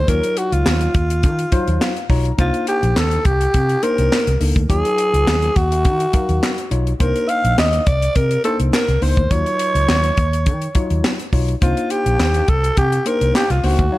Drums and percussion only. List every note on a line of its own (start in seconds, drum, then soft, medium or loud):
0.08 kick loud
0.08 closed hi-hat medium
0.23 closed hi-hat medium
0.37 closed hi-hat medium
0.52 closed hi-hat medium
0.66 snare loud
0.66 clap medium
0.81 closed hi-hat soft
0.94 kick loud
0.94 closed hi-hat medium
1.10 closed hi-hat medium
1.23 kick loud
1.23 closed hi-hat medium
1.39 closed hi-hat medium
1.52 kick loud
1.52 closed hi-hat medium
1.68 closed hi-hat soft
1.81 snare loud
1.81 clap medium
1.97 closed hi-hat soft
2.10 kick medium
2.10 open hi-hat medium
2.25 closed hi-hat soft
2.39 kick loud
2.39 closed hi-hat medium
2.54 closed hi-hat medium
2.67 closed hi-hat medium
2.83 closed hi-hat medium
2.96 snare loud
2.96 clap medium
3.11 closed hi-hat soft
3.25 kick loud
3.25 closed hi-hat medium
3.41 closed hi-hat medium
3.54 kick medium
3.54 closed hi-hat medium
3.69 closed hi-hat soft
3.83 closed hi-hat medium
3.98 closed hi-hat soft
4.12 snare loud
4.12 clap medium
4.27 closed hi-hat soft
4.41 open hi-hat medium
4.56 kick medium
4.56 closed hi-hat soft
4.70 kick loud
4.70 closed hi-hat medium
4.85 closed hi-hat medium
4.98 closed hi-hat medium
5.14 closed hi-hat medium
5.27 snare loud
5.27 clap medium
5.42 closed hi-hat soft
5.56 kick loud
5.56 closed hi-hat medium
5.72 closed hi-hat medium
5.85 kick loud
5.85 closed hi-hat medium
6.00 closed hi-hat medium
6.13 kick medium
6.13 closed hi-hat medium
6.29 closed hi-hat soft
6.43 snare loud
6.43 clap medium
6.58 closed hi-hat soft
6.71 closed hi-hat medium
6.87 closed hi-hat soft
7.00 kick loud
7.00 closed hi-hat medium
7.16 closed hi-hat soft
7.29 closed hi-hat medium
7.45 closed hi-hat medium
7.58 snare loud
7.58 clap medium
7.73 closed hi-hat soft
7.87 kick loud
7.87 closed hi-hat medium
8.02 closed hi-hat medium
8.15 kick loud
8.15 closed hi-hat medium
8.31 closed hi-hat medium
8.44 closed hi-hat medium
8.60 closed hi-hat soft
8.73 snare loud
8.73 clap medium
8.88 closed hi-hat soft
9.02 open hi-hat medium
9.17 kick medium
9.17 closed hi-hat soft
9.31 kick loud
9.31 closed hi-hat medium
9.46 closed hi-hat soft
9.59 closed hi-hat medium
9.75 closed hi-hat medium
9.89 snare loud
9.89 clap medium
10.04 closed hi-hat medium
10.17 kick loud
10.17 closed hi-hat medium
10.33 closed hi-hat medium
10.46 kick loud
10.46 closed hi-hat medium
10.62 closed hi-hat soft
10.75 kick medium
10.75 closed hi-hat medium
10.90 closed hi-hat soft
11.04 snare loud
11.04 clap medium
11.19 closed hi-hat soft
11.33 kick medium
11.33 open hi-hat medium
11.49 closed hi-hat soft
11.62 kick loud
11.62 closed hi-hat medium
11.77 closed hi-hat medium
11.90 closed hi-hat medium
12.06 closed hi-hat medium
12.20 snare loud
12.20 clap medium
12.34 closed hi-hat medium
12.48 kick loud
12.48 closed hi-hat medium
12.64 closed hi-hat medium
12.77 kick loud
12.77 closed hi-hat medium
12.92 closed hi-hat medium
13.06 closed hi-hat medium
13.21 closed hi-hat soft
13.35 snare loud
13.35 clap medium
13.50 closed hi-hat soft
13.64 open hi-hat medium
13.79 kick medium
13.79 closed hi-hat soft